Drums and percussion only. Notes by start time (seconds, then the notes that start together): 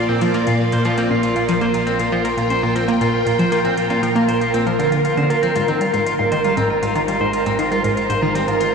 0.21 closed hi-hat
0.34 closed hi-hat
0.47 closed hi-hat
0.72 closed hi-hat
0.85 closed hi-hat
0.98 closed hi-hat
1.10 high conga
1.23 closed hi-hat
1.36 closed hi-hat
1.49 closed hi-hat
1.61 closed hi-hat
1.74 closed hi-hat
1.87 closed hi-hat
1.99 closed hi-hat
2.25 closed hi-hat
2.38 closed hi-hat
2.50 closed hi-hat, high conga
2.76 closed hi-hat
2.88 closed hi-hat
3.01 closed hi-hat
3.27 closed hi-hat
3.39 closed hi-hat
3.52 closed hi-hat
3.65 closed hi-hat
3.77 closed hi-hat
3.90 closed hi-hat, high conga
4.03 closed hi-hat
4.16 closed hi-hat
4.29 closed hi-hat
4.41 closed hi-hat
4.54 closed hi-hat
4.67 closed hi-hat
4.80 closed hi-hat
4.92 closed hi-hat
5.05 closed hi-hat
5.17 closed hi-hat, high conga
5.30 closed hi-hat
5.43 closed hi-hat
5.56 closed hi-hat
5.68 closed hi-hat
5.81 closed hi-hat
5.94 closed hi-hat
6.06 closed hi-hat
6.32 closed hi-hat
6.45 closed hi-hat
6.57 closed hi-hat, high conga
6.83 closed hi-hat
6.96 closed hi-hat
7.08 closed hi-hat
7.33 closed hi-hat
7.46 closed hi-hat
7.59 closed hi-hat
7.72 closed hi-hat
7.84 closed hi-hat
7.97 closed hi-hat
8.10 closed hi-hat
8.35 closed hi-hat
8.48 closed hi-hat
8.61 closed hi-hat